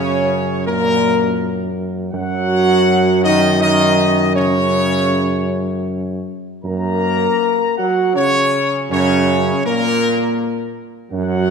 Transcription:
0.00 2.09 F#2 loud
0.00 0.63 C#3 loud
0.00 0.62 C#4 loud
0.00 0.62 C#5 loud
0.66 1.73 A#2 loud
0.66 1.72 A#3 loud
0.66 1.72 A#4 loud
2.13 6.28 F#2 loud
2.13 3.20 F#3 loud
2.13 3.19 F#4 loud
2.13 3.19 F#5 loud
3.24 3.58 D#3 loud
3.24 3.58 D#4 loud
3.24 3.58 D#5 loud
3.60 4.31 D#3 loud
3.60 4.31 D#4 loud
3.60 4.31 D#5 loud
4.35 6.22 C#3 loud
4.35 6.22 C#4 loud
4.35 6.22 C#5 loud
6.64 7.27 F#2 loud
6.64 7.73 A#3 loud
6.64 7.73 A#4 loud
6.64 7.73 A#5 loud
7.77 8.13 F#3 loud
7.77 8.15 F#4 loud
7.77 8.15 F#5 loud
8.15 8.90 C#3 loud
8.15 8.89 C#4 loud
8.15 8.86 C#5 loud
8.90 9.52 F#2 loud
8.90 9.61 C#3 loud
8.90 9.61 C#4 loud
8.90 9.61 C#5 loud
9.64 10.75 A#2 loud
9.64 10.71 A#3 loud
9.64 10.71 A#4 loud
11.11 11.50 F#2 loud
11.11 11.50 F#3 loud
11.11 11.50 F#4 loud
11.11 11.50 F#5 loud

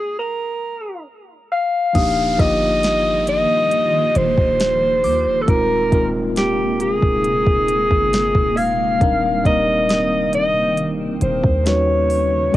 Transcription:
0.00 0.18 G#4 loud
0.19 1.03 A#4 medium
1.52 2.42 F5 loud
1.93 2.37 D#1 loud
1.93 5.44 D#3 medium
1.93 2.24 F3 medium
1.93 5.44 G3 medium
1.93 2.25 A#3 medium
1.93 5.44 A#3 medium
1.93 2.25 D4 medium
1.93 2.26 D#4 medium
1.93 5.44 F4 medium
1.93 4.93 D#6 medium
1.93 kick loud
1.93 closed hi-hat medium
1.93 crash loud
1.93 downlifter medium
1.98 2.27 G4 medium
2.37 3.46 G1 loud
2.37 3.59 F3 medium
2.37 3.60 A#3 medium
2.37 3.61 D#4 medium
2.37 3.60 F4 medium
2.37 3.28 D#5 loud
2.37 kick medium
2.37 closed hi-hat medium
2.42 3.61 G4 medium
2.83 snare loud
2.83 closed hi-hat medium
3.27 4.18 D#5 loud
3.27 closed hi-hat medium
3.71 closed hi-hat medium
4.15 4.37 D#1 loud
4.15 5.43 C5 loud
4.15 closed hi-hat medium
4.38 5.06 D#1 loud
4.38 kick medium
4.60 snare loud
4.60 closed hi-hat medium
5.04 5.28 D#2 medium
5.04 5.88 D6 medium
5.04 open hi-hat medium
5.27 5.47 D#1 loud
5.42 5.51 A4 medium
5.46 5.90 D#1 loud
5.46 11.62 C3 medium
5.46 5.77 G#3 medium
5.46 8.97 G#3 medium
5.46 11.62 A#3 medium
5.46 5.78 C4 medium
5.46 5.78 D#4 medium
5.46 8.98 D#4 medium
5.46 5.79 F4 medium
5.46 6.10 A#4 loud
5.46 kick loud
5.46 closed hi-hat medium
5.50 5.79 A#4 medium
5.90 6.99 D#1 loud
5.90 7.12 G#3 medium
5.90 7.13 C4 medium
5.90 7.13 D#4 medium
5.90 7.14 F4 medium
5.90 kick loud
5.90 closed hi-hat medium
5.94 7.14 A#4 medium
6.36 6.78 G4 loud
6.36 snare loud
6.36 closed hi-hat medium
6.80 8.59 G#4 loud
6.80 closed hi-hat medium
7.02 7.45 D#1 medium
7.02 kick medium
7.24 closed hi-hat medium
7.47 7.89 D#1 loud
7.47 kick loud
7.68 closed hi-hat medium
7.91 8.33 G1 loud
7.91 kick medium
8.13 snare loud
8.13 closed hi-hat medium
8.35 8.98 D#1 loud
8.35 kick loud
8.57 9.45 F5 loud
8.57 9.41 G#6 medium
8.57 open hi-hat medium
8.99 9.43 D#1 loud
8.99 11.63 D#3 medium
8.99 9.30 G3 medium
8.99 9.31 C4 medium
8.99 11.63 C4 medium
8.99 9.31 D4 medium
8.99 9.32 D#4 medium
8.99 kick loud
8.99 closed hi-hat medium
9.03 9.32 A#4 medium
9.43 11.18 D#1 loud
9.43 10.65 G3 medium
9.43 10.66 A#3 medium
9.43 10.66 C4 medium
9.43 10.67 D#4 medium
9.43 10.30 D#5 loud
9.43 kick loud
9.43 closed hi-hat medium
9.48 10.67 A#4 medium
9.89 12.06 D#6 medium
9.89 snare loud
9.89 closed hi-hat medium
10.33 10.91 D#5 loud
10.33 closed hi-hat medium
10.77 closed hi-hat medium
11.21 11.43 D#1 loud
11.21 11.68 C5 medium
11.21 closed hi-hat medium
11.44 12.50 D#2 loud
11.44 kick medium
11.64 11.71 F#3 medium
11.64 12.36 C#4 medium
11.64 12.36 D#4 medium
11.64 12.37 F#4 medium
11.64 12.56 C#5 loud
11.64 snare loud
11.64 closed hi-hat medium
11.68 12.39 G3 medium
11.68 12.38 B4 medium
12.10 open hi-hat medium
12.52 12.57 G#3 medium
12.52 12.57 B3 medium

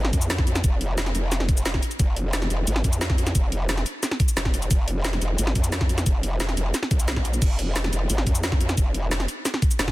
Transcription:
0.00 0.12 G#1 loud
0.05 snare medium
0.13 0.63 F2 loud
0.13 kick medium
0.13 closed hi-hat medium
0.13 cabasa soft
0.22 closed hi-hat soft
0.22 cabasa medium
0.30 snare loud
0.30 closed hi-hat medium
0.30 cabasa soft
0.38 kick loud
0.38 snare medium
0.47 closed hi-hat medium
0.47 cabasa soft
0.55 snare medium
0.55 closed hi-hat soft
0.55 cabasa soft
0.64 1.13 F1 medium
0.64 kick loud
0.64 closed hi-hat medium
0.64 cabasa soft
0.81 closed hi-hat medium
0.98 snare loud
0.98 closed hi-hat medium
0.98 cabasa soft
1.06 snare soft
1.06 closed hi-hat soft
1.15 1.64 F1 medium
1.15 closed hi-hat medium
1.15 cabasa soft
1.32 snare soft
1.32 closed hi-hat medium
1.32 cabasa medium
1.40 snare soft
1.49 kick loud
1.49 closed hi-hat medium
1.49 cabasa soft
1.57 closed hi-hat soft
1.57 cabasa medium
1.66 1.81 F1 loud
1.66 snare loud
1.66 closed hi-hat medium
1.66 cabasa medium
1.74 kick medium
1.74 snare medium
1.83 closed hi-hat medium
1.83 cabasa soft
1.91 closed hi-hat soft
1.91 cabasa soft
1.99 2.49 F1 loud
1.99 kick loud
1.99 closed hi-hat medium
1.99 cabasa medium
2.16 closed hi-hat medium
2.33 snare loud
2.33 closed hi-hat medium
2.33 cabasa soft
2.42 snare soft
2.42 closed hi-hat soft
2.50 2.66 F1 loud
2.50 closed hi-hat medium
2.50 cabasa soft
2.67 2.83 G#1 loud
2.67 closed hi-hat medium
2.67 cabasa medium
2.76 snare soft
2.84 3.34 F2 loud
2.84 kick medium
2.84 closed hi-hat medium
2.84 cabasa soft
2.93 closed hi-hat soft
2.93 cabasa medium
3.01 snare loud
3.01 closed hi-hat medium
3.01 cabasa medium
3.10 kick loud
3.10 snare medium
3.18 closed hi-hat medium
3.18 cabasa soft
3.27 snare medium
3.27 closed hi-hat soft
3.27 cabasa soft
3.35 3.85 F1 medium
3.35 kick loud
3.35 closed hi-hat medium
3.35 cabasa medium
3.52 closed hi-hat medium
3.69 snare loud
3.69 closed hi-hat medium
3.69 cabasa medium
3.77 snare soft
3.77 closed hi-hat soft
3.86 closed hi-hat medium
3.86 cabasa soft
4.03 snare soft
4.03 closed hi-hat medium
4.03 cabasa medium
4.11 snare soft
4.20 kick loud
4.20 closed hi-hat medium
4.20 cabasa soft
4.28 closed hi-hat soft
4.28 cabasa medium
4.37 4.69 F1 loud
4.37 snare loud
4.37 closed hi-hat medium
4.37 cabasa medium
4.45 kick medium
4.45 snare medium
4.54 closed hi-hat medium
4.54 cabasa soft
4.62 closed hi-hat soft
4.62 cabasa soft
4.71 5.20 F1 medium
4.71 kick loud
4.71 closed hi-hat loud
4.71 cabasa medium
4.88 closed hi-hat medium
5.05 snare loud
5.05 closed hi-hat medium
5.05 cabasa medium
5.13 snare soft
5.13 closed hi-hat soft
5.22 5.37 F1 loud
5.22 closed hi-hat medium
5.22 cabasa soft
5.39 5.54 G#1 loud
5.39 closed hi-hat loud
5.39 cabasa medium
5.47 snare soft
5.55 6.05 F2 loud
5.55 kick medium
5.55 closed hi-hat medium
5.55 cabasa soft
5.64 closed hi-hat soft
5.64 cabasa medium
5.72 snare loud
5.72 closed hi-hat loud
5.72 cabasa medium
5.81 kick loud
5.81 snare medium
5.89 closed hi-hat medium
5.89 cabasa soft
5.98 snare medium
5.98 closed hi-hat soft
5.98 cabasa soft
6.06 6.56 F1 loud
6.06 kick loud
6.06 closed hi-hat loud
6.06 cabasa medium
6.23 closed hi-hat medium
6.40 snare loud
6.40 closed hi-hat loud
6.40 cabasa soft
6.49 snare soft
6.49 closed hi-hat soft
6.57 6.73 F1 medium
6.57 closed hi-hat medium
6.57 cabasa soft
6.74 snare soft
6.74 snare medium
6.74 closed hi-hat loud
6.74 cabasa medium
6.83 snare soft
6.91 7.41 C2 loud
6.91 kick loud
6.91 closed hi-hat medium
6.91 cabasa soft
6.99 closed hi-hat soft
6.99 cabasa medium
7.08 snare loud
7.08 closed hi-hat loud
7.08 cabasa medium
7.16 kick medium
7.16 snare medium
7.25 closed hi-hat medium
7.25 cabasa soft
7.33 closed hi-hat soft
7.33 cabasa soft
7.42 kick loud
7.42 closed hi-hat loud
7.42 crash medium
7.42 cabasa medium
7.59 closed hi-hat medium
7.76 snare loud
7.76 closed hi-hat loud
7.76 cabasa soft
7.84 snare medium
7.84 closed hi-hat soft
7.93 8.08 F1 loud
7.93 closed hi-hat medium
7.93 cabasa soft
8.10 8.25 G#1 loud
8.10 closed hi-hat loud
8.10 cabasa soft
8.18 snare medium
8.27 8.76 F2 loud
8.27 kick medium
8.27 closed hi-hat medium
8.27 cabasa soft
8.35 closed hi-hat soft
8.35 cabasa medium
8.44 snare loud
8.44 closed hi-hat loud
8.44 cabasa medium
8.52 kick loud
8.52 snare medium
8.61 closed hi-hat medium
8.61 cabasa soft
8.69 snare medium
8.69 closed hi-hat soft
8.69 cabasa soft
8.78 9.27 F1 loud
8.78 kick loud
8.78 closed hi-hat loud
8.78 cabasa soft
8.94 closed hi-hat medium
9.11 snare loud
9.11 closed hi-hat medium
9.11 cabasa soft
9.20 snare medium
9.20 closed hi-hat soft
9.28 closed hi-hat medium
9.28 cabasa soft
9.45 snare soft
9.45 closed hi-hat loud
9.45 cabasa soft
9.54 snare medium
9.62 kick loud
9.62 closed hi-hat medium
9.62 cabasa soft
9.71 closed hi-hat soft
9.71 cabasa medium
9.79 9.92 F1 loud
9.79 snare loud
9.79 closed hi-hat medium
9.79 cabasa soft
9.88 kick medium
9.88 snare medium

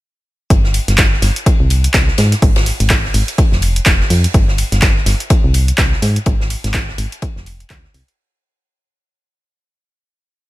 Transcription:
0.50 0.79 G1 loud
0.50 kick loud
0.50 closed hi-hat medium
0.50 ride medium
0.64 snare soft
0.74 open hi-hat loud
0.74 ride medium
0.88 1.16 G1 loud
0.88 snare medium
0.88 closed hi-hat medium
0.98 kick loud
0.98 snare loud
0.98 clap loud
0.98 closed hi-hat medium
0.98 ride medium
1.13 snare soft
1.22 1.31 G1 loud
1.22 snare medium
1.22 open hi-hat loud
1.22 ride medium
1.36 closed hi-hat medium
1.46 kick loud
1.46 closed hi-hat medium
1.46 ride medium
1.60 1.88 C2 loud
1.70 open hi-hat loud
1.70 ride medium
1.84 closed hi-hat medium
1.94 2.10 C2 medium
1.94 kick loud
1.94 snare loud
1.94 clap loud
1.94 closed hi-hat medium
1.94 ride medium
2.08 snare soft
2.18 2.34 G#2 medium
2.18 snare loud
2.18 open hi-hat loud
2.18 ride medium
2.32 snare soft
2.32 closed hi-hat medium
2.42 2.71 G#1 loud
2.42 kick loud
2.42 closed hi-hat medium
2.42 open hi-hat medium
2.56 snare loud
2.56 ride medium
2.66 snare soft
2.66 open hi-hat loud
2.80 3.08 G#1 loud
2.80 closed hi-hat medium
2.80 open hi-hat medium
2.90 kick loud
2.90 snare loud
2.90 clap loud
2.90 closed hi-hat medium
2.90 ride medium
3.05 snare soft
3.14 3.23 G#1 loud
3.14 open hi-hat loud
3.14 open hi-hat medium
3.28 closed hi-hat medium
3.28 ride soft
3.38 kick loud
3.38 closed hi-hat medium
3.38 ride medium
3.52 3.80 F1 loud
3.52 snare medium
3.62 open hi-hat loud
3.62 ride medium
3.76 closed hi-hat medium
3.86 4.02 F1 medium
3.86 kick loud
3.86 snare loud
3.86 clap loud
3.86 closed hi-hat medium
3.86 ride medium
4.00 snare medium
4.10 4.26 F2 medium
4.10 open hi-hat loud
4.10 open hi-hat medium
4.24 closed hi-hat medium
4.34 4.63 G1 loud
4.34 kick loud
4.34 closed hi-hat medium
4.34 ride medium
4.48 snare soft
4.58 open hi-hat loud
4.58 ride medium
4.72 5.00 G1 loud
4.72 snare medium
4.72 closed hi-hat medium
4.82 kick loud
4.82 snare loud
4.82 clap loud
4.82 closed hi-hat medium
4.82 ride medium
4.97 snare soft
5.06 5.15 G1 loud
5.06 snare medium
5.06 open hi-hat loud
5.06 ride medium
5.20 closed hi-hat medium
5.30 kick loud
5.30 closed hi-hat medium
5.30 ride medium
5.44 5.72 C2 loud
5.54 open hi-hat loud
5.54 ride medium
5.68 closed hi-hat medium
5.78 5.94 C2 medium
5.78 kick loud
5.78 snare loud
5.78 clap loud
5.78 closed hi-hat medium
5.78 ride medium
5.92 snare soft
6.02 6.18 G#2 medium
6.02 snare medium
6.02 open hi-hat loud
6.02 ride medium
6.16 closed hi-hat medium
6.26 6.55 G#1 loud
6.26 kick loud
6.26 closed hi-hat soft
6.26 ride medium
6.40 snare medium
6.50 open hi-hat loud
6.50 ride medium
6.64 6.92 G#1 loud
6.64 snare medium
6.64 closed hi-hat medium
6.74 kick loud
6.74 snare loud
6.74 clap loud
6.74 closed hi-hat medium
6.74 ride medium
6.89 snare soft
6.98 7.07 G#1 loud
6.98 open hi-hat loud
6.98 ride medium
7.12 closed hi-hat medium
7.12 ride soft
7.22 kick loud
7.22 closed hi-hat medium
7.22 ride medium
7.36 7.64 F1 loud
7.36 snare medium
7.46 open hi-hat loud
7.46 ride medium
7.60 closed hi-hat medium
7.70 7.86 D2 medium
7.70 kick loud
7.70 snare loud
7.70 clap loud
7.70 closed hi-hat medium
7.70 ride medium
7.84 snare medium
7.94 8.03 C2 medium
7.94 open hi-hat medium
7.94 open hi-hat loud
8.08 closed hi-hat medium

